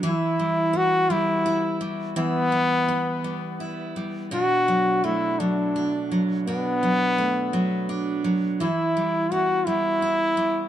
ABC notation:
X:1
M:6/8
L:1/8
Q:3/8=56
K:Em
V:1 name="Trombone"
E2 F E2 z | B,4 z2 | F2 E D2 z | B,4 z2 |
E2 F E3 |]
V:2 name="Steel-string acoustic guitar" clef=bass
[E,E] G, B, G, E G, | [E,E] G, B, G, E G, | [B,,D] F, A, F, D F, | [B,,D] F, A, F, D F, |
[E,E] G, B, G, E G, |]